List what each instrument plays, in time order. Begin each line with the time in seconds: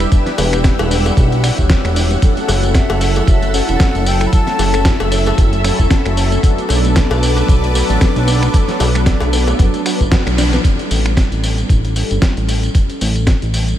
Already playing: analog synth pad G4 E6
0.00 synth arpeggio sound B3, finger snap, closed hi-hat, tambourine
0.11 analog polysynth G3 D4 E4 B4, synth arpeggio sound G3, analog synth pad F#5, kick, closed hi-hat, tambourine
0.26 synth arpeggio sound B3, snare, closed hi-hat, tambourine
0.38 analog synth bass E1, synth arpeggio sound G3, open hi-hat, tambourine, cowbell
0.53 synth arpeggio sound B3, finger snap, closed hi-hat, tambourine
0.64 synth arpeggio sound D4, kick, snare, closed hi-hat, tambourine
0.79 analog synth bass E1, synth arpeggio sound B3, closed hi-hat, tambourine, cowbell
0.90 synth arpeggio sound D4, open hi-hat, tambourine
1.05 synth arpeggio sound B3, closed hi-hat, tambourine, cowbell
1.17 analog synth bass B1, synth arpeggio sound G3, kick, closed hi-hat, tambourine
1.31 synth arpeggio sound B3, closed hi-hat, tambourine
1.43 analog polysynth G3 D4 E4 C#5, synth arpeggio sound D4, finger snap, open hi-hat, tambourine
1.58 analog synth bass D1, synth arpeggio sound E4, kick, closed hi-hat, tambourine
1.70 synth arpeggio sound G3, kick, snare, closed hi-hat, tambourine
1.84 analog synth bass E1, synth arpeggio sound B3, finger snap, closed hi-hat, tambourine
1.96 synth arpeggio sound D4, open hi-hat, tambourine
2.11 synth arpeggio sound B3, closed hi-hat, tambourine
2.22 analog polysynth F#3 C#4 E4 A4, synth arpeggio sound F#3, analog synth pad A4 E6, kick, closed hi-hat, tambourine
2.37 synth arpeggio sound A3, closed hi-hat, tambourine
2.48 analog synth bass F#1, synth arpeggio sound F#3, open hi-hat, tambourine, cowbell
2.63 synth arpeggio sound A3, closed hi-hat, tambourine
2.74 synth arpeggio sound C#4, flute E5, kick, snare, closed hi-hat, tambourine
2.89 analog synth bass F#1, synth arpeggio sound A3, closed hi-hat, tambourine, cowbell
3.01 synth arpeggio sound C#4, open hi-hat, tambourine
3.16 synth arpeggio sound A3, closed hi-hat, tambourine, cowbell
3.27 analog synth bass F#1, synth arpeggio sound F#3, flute E5, kick, closed hi-hat, tambourine
3.42 synth arpeggio sound A3, closed hi-hat, tambourine
3.53 analog polysynth F#3 C#4 E4 A4, synth arpeggio sound C#4, flute F#5, open hi-hat, tambourine
3.69 analog synth bass E1, synth arpeggio sound E4, closed hi-hat, tambourine
3.80 synth arpeggio sound F#3, kick, snare, closed hi-hat, tambourine
3.95 analog synth bass F#1, synth arpeggio sound A3, closed hi-hat, tambourine
4.06 synth arpeggio sound C#4, flute G5, open hi-hat, tambourine
4.21 synth arpeggio sound A3, finger snap, closed hi-hat, tambourine
4.27 flute B5
4.32 analog polysynth F#3 C#4 E4 A4, synth arpeggio sound F#3, analog synth pad E5, flute A5, kick, closed hi-hat, tambourine
4.47 synth arpeggio sound A3, snare, closed hi-hat, tambourine
4.59 analog synth bass F#1, synth arpeggio sound F#3, open hi-hat, tambourine, cowbell
4.74 synth arpeggio sound A3, finger snap, closed hi-hat, tambourine
4.85 synth arpeggio sound C#4, kick, snare, closed hi-hat, tambourine
5.00 analog synth bass F#1, synth arpeggio sound A3, closed hi-hat, tambourine, cowbell
5.12 synth arpeggio sound C#4, open hi-hat, tambourine
5.26 synth arpeggio sound A3, closed hi-hat, tambourine, cowbell
5.38 analog synth bass F#1, synth arpeggio sound F#3, kick, closed hi-hat, tambourine
5.53 synth arpeggio sound A3, closed hi-hat, tambourine
5.64 analog polysynth F#3 C#4 E4 A4, synth arpeggio sound C#4, finger snap, open hi-hat, tambourine
5.79 analog synth bass E1, synth arpeggio sound E4, kick, closed hi-hat, tambourine
5.90 synth arpeggio sound F#3, kick, snare, closed hi-hat, tambourine
6.05 analog synth bass F#1, synth arpeggio sound A3, finger snap, closed hi-hat, tambourine
6.17 synth arpeggio sound C#4, open hi-hat, tambourine
6.32 synth arpeggio sound A3, closed hi-hat, tambourine
6.43 analog polysynth F#3 B3 D4 A4, synth arpeggio sound F#3, analog synth pad B4 A5 D6, kick, closed hi-hat, tambourine
6.58 synth arpeggio sound A3, closed hi-hat, tambourine
6.69 analog synth bass B1, synth arpeggio sound F#3, open hi-hat, tambourine, cowbell
6.85 synth arpeggio sound A3, closed hi-hat, tambourine
6.96 synth arpeggio sound B3, kick, snare, closed hi-hat, tambourine
7.11 analog synth bass B1, synth arpeggio sound A3, closed hi-hat, tambourine, cowbell
7.22 synth arpeggio sound B3, open hi-hat, tambourine
7.37 synth arpeggio sound A3, closed hi-hat, tambourine, cowbell
7.49 analog synth bass B1, synth arpeggio sound F#3, kick, closed hi-hat, tambourine
7.63 synth arpeggio sound A3, closed hi-hat, tambourine
7.74 analog polysynth F#3 B3 D4 A4, synth arpeggio sound B3, open hi-hat, tambourine
7.89 analog synth bass A1, synth arpeggio sound D4, closed hi-hat, tambourine
8.01 synth arpeggio sound F#3, kick, snare, closed hi-hat, tambourine
8.16 analog synth bass B1, synth arpeggio sound A3, closed hi-hat, tambourine
8.27 synth arpeggio sound B3, open hi-hat, tambourine
8.42 synth arpeggio sound A3, finger snap, closed hi-hat, tambourine
8.53 analog polysynth F#3 B3 D4 A4, synth arpeggio sound F#3, kick, closed hi-hat, tambourine
8.68 synth arpeggio sound A3, snare, closed hi-hat, tambourine
8.80 analog synth bass B1, synth arpeggio sound F#3, open hi-hat, tambourine, cowbell
8.95 synth arpeggio sound A3, finger snap, closed hi-hat, tambourine
9.06 synth arpeggio sound B3, kick, snare, closed hi-hat, tambourine
9.20 analog synth bass B1, synth arpeggio sound A3, closed hi-hat, tambourine, cowbell
9.33 synth arpeggio sound B3, open hi-hat, tambourine
9.47 synth arpeggio sound A3, closed hi-hat, tambourine, cowbell
9.59 analog synth bass F#1, synth arpeggio sound F#3, kick, closed hi-hat, tambourine
9.74 synth arpeggio sound A3, closed hi-hat, tambourine
9.84 analog polysynth F#3 B3 D4 B4, synth arpeggio sound F#4, finger snap, open hi-hat, tambourine
10.00 analog synth bass F#1, synth arpeggio sound A3, kick, closed hi-hat, tambourine
10.12 synth arpeggio sound F#4, kick, snare, closed hi-hat, tambourine
10.26 analog synth bass B1, synth arpeggio sound A3, finger snap, closed hi-hat, tambourine
10.38 synth arpeggio sound D4, snare, open hi-hat, tambourine
10.53 synth arpeggio sound B3, snare, closed hi-hat, tambourine
10.63 analog polysynth G3 C#4 E4 A4, kick, closed hi-hat, tambourine
10.79 closed hi-hat, tambourine
10.91 analog synth bass A1, open hi-hat, tambourine
11.06 finger snap, closed hi-hat, tambourine
11.17 kick, snare, closed hi-hat, tambourine
11.32 analog synth bass A1, closed hi-hat, tambourine
11.44 open hi-hat, tambourine
11.58 closed hi-hat, tambourine
11.69 analog synth bass A1, kick, closed hi-hat, tambourine
11.85 closed hi-hat, tambourine
11.95 analog polysynth G3 C#4 E4 A4, open hi-hat, tambourine
12.10 analog synth bass G1, closed hi-hat, tambourine
12.22 kick, snare, closed hi-hat, tambourine
12.37 analog synth bass A1, closed hi-hat, tambourine
12.49 open hi-hat, tambourine
12.63 closed hi-hat, tambourine
12.74 analog polysynth G3 C#4 E4 A4, kick, closed hi-hat, tambourine
12.90 closed hi-hat, tambourine
13.01 analog synth bass A1, open hi-hat, tambourine
13.16 closed hi-hat, tambourine
13.27 kick, snare, closed hi-hat, tambourine
13.42 analog synth bass A1, closed hi-hat, tambourine
13.54 open hi-hat, tambourine
13.69 closed hi-hat, tambourine